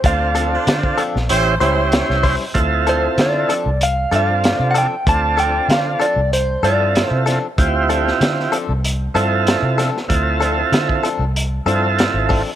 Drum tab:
HH |x-x-x-x-x-x-x-o-|x-x-x-x-x-x-x-x-|x-x-x-x-x-x-x-x-|x-x-x-x-x-x-x-x-|
SD |----o--o----oo--|----o-------o---|----o-------o-o-|---ooo------o-oo|
BD |o----o--------o-|o---------------|o---------------|o---------------|

HH |x-x-x-x-x-x-x-o-|
SD |----o-------o---|
BD |o----o--------o-|